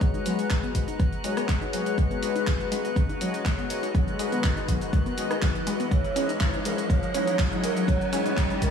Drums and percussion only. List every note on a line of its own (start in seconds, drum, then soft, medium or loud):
0.01 kick loud
0.01 closed hi-hat medium
0.01 shaker soft
0.14 closed hi-hat soft
0.14 shaker soft
0.26 open hi-hat loud
0.26 shaker medium
0.39 closed hi-hat medium
0.39 shaker soft
0.50 kick loud
0.50 clap loud
0.50 closed hi-hat medium
0.50 shaker soft
0.63 closed hi-hat soft
0.63 shaker soft
0.75 kick medium
0.75 open hi-hat loud
0.75 shaker medium
0.88 closed hi-hat medium
0.88 shaker soft
1.00 kick loud
1.00 closed hi-hat medium
1.00 shaker soft
1.13 closed hi-hat soft
1.13 shaker soft
1.24 open hi-hat loud
1.24 shaker medium
1.37 cross-stick medium
1.37 closed hi-hat soft
1.37 shaker soft
1.49 kick loud
1.49 clap loud
1.49 closed hi-hat soft
1.49 shaker soft
1.62 closed hi-hat soft
1.62 shaker soft
1.73 open hi-hat loud
1.73 shaker medium
1.86 closed hi-hat medium
1.86 shaker soft
1.98 kick loud
1.98 closed hi-hat medium
1.98 shaker soft
2.11 closed hi-hat soft
2.11 shaker soft
2.23 open hi-hat loud
2.23 shaker medium
2.36 closed hi-hat soft
2.36 shaker soft
2.47 kick loud
2.47 clap loud
2.47 closed hi-hat medium
2.47 shaker soft
2.60 closed hi-hat soft
2.60 shaker soft
2.72 open hi-hat loud
2.72 shaker medium
2.85 closed hi-hat medium
2.85 shaker soft
2.96 kick loud
2.96 closed hi-hat medium
2.96 shaker soft
3.09 closed hi-hat soft
3.09 shaker soft
3.21 open hi-hat loud
3.21 shaker medium
3.34 closed hi-hat soft
3.34 shaker soft
3.46 kick loud
3.46 clap loud
3.46 closed hi-hat medium
3.46 shaker soft
3.59 closed hi-hat soft
3.59 shaker soft
3.70 open hi-hat loud
3.70 shaker medium
3.83 closed hi-hat medium
3.83 shaker soft
3.95 kick loud
3.95 closed hi-hat medium
3.95 shaker soft
4.08 closed hi-hat soft
4.08 shaker soft
4.19 open hi-hat loud
4.19 shaker medium
4.32 closed hi-hat soft
4.32 shaker soft
4.44 kick loud
4.44 clap loud
4.44 closed hi-hat soft
4.44 shaker soft
4.57 closed hi-hat soft
4.57 shaker soft
4.68 kick medium
4.68 open hi-hat loud
4.68 shaker medium
4.81 closed hi-hat soft
4.81 shaker soft
4.93 kick loud
4.93 closed hi-hat medium
4.93 shaker soft
5.06 closed hi-hat soft
5.06 shaker soft
5.18 open hi-hat loud
5.18 shaker medium
5.31 cross-stick medium
5.31 closed hi-hat soft
5.31 shaker soft
5.42 kick loud
5.42 clap loud
5.42 closed hi-hat medium
5.42 shaker soft
5.55 closed hi-hat soft
5.55 shaker soft
5.67 open hi-hat loud
5.67 shaker medium
5.80 closed hi-hat soft
5.80 shaker soft
5.91 kick loud
5.91 closed hi-hat soft
5.91 shaker soft
6.04 closed hi-hat soft
6.04 shaker soft
6.16 open hi-hat loud
6.16 shaker medium
6.29 closed hi-hat soft
6.29 shaker soft
6.41 kick loud
6.41 clap loud
6.41 closed hi-hat medium
6.41 shaker soft
6.54 closed hi-hat soft
6.54 shaker soft
6.65 open hi-hat loud
6.65 shaker medium
6.78 closed hi-hat soft
6.78 shaker soft
6.90 kick loud
6.90 closed hi-hat soft
6.90 shaker soft
7.03 closed hi-hat soft
7.03 shaker soft
7.14 open hi-hat loud
7.14 shaker medium
7.27 closed hi-hat soft
7.27 shaker soft
7.39 kick loud
7.39 clap loud
7.39 closed hi-hat medium
7.39 shaker soft
7.52 closed hi-hat soft
7.52 shaker soft
7.64 open hi-hat loud
7.64 shaker medium
7.77 closed hi-hat soft
7.77 shaker soft
7.88 kick loud
7.88 closed hi-hat soft
7.88 shaker soft
8.01 closed hi-hat soft
8.01 shaker soft
8.13 open hi-hat loud
8.13 shaker medium
8.26 closed hi-hat soft
8.26 shaker soft
8.37 kick loud
8.37 clap loud
8.37 closed hi-hat soft
8.37 shaker soft
8.50 closed hi-hat soft
8.50 shaker soft
8.62 kick medium
8.62 open hi-hat loud
8.62 shaker medium